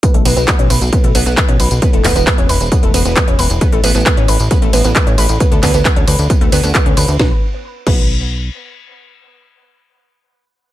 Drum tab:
CC |----------------|----------------|----------------|----------------|
RD |--x---x---x---x-|--x---x---x---x-|--x---x---x---x-|--x---x---x---x-|
HH |xxoxxxoxxxoxxxox|xxoxxxoxxxoxxxox|xxoxxxoxxxoxxxox|xxoxxxoxxxoxxxox|
TB |x-xxx-xxx-xx--xx|x-xxx-xxx-xxx-xx|x-xxx-xxx-xxx-xx|x-xxx-xxx-xxx-xx|
CP |----x-------x---|--x-x-------x---|----x-------x---|--x-x-------x---|
SD |----------------|----------------|----------------|----------------|
BD |o---o---o---o---|o-o-o---o---o---|o---o---o---o---|o-o-o---o---o---|

CC |------x---------|----------------|
RD |----------------|----------------|
HH |----------------|----------------|
TB |----------------|----------------|
CP |----------------|----------------|
SD |o---------------|----------------|
BD |o-----o---------|----------------|